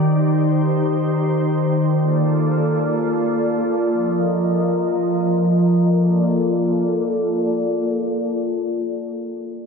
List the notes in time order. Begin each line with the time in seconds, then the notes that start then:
Already playing: D#3 D#4 G4
0.04 C5
1.97 A#3 F4 A4 D5
3.91 F3 A#4 D#5
5.85 A#3 F4 A4 D5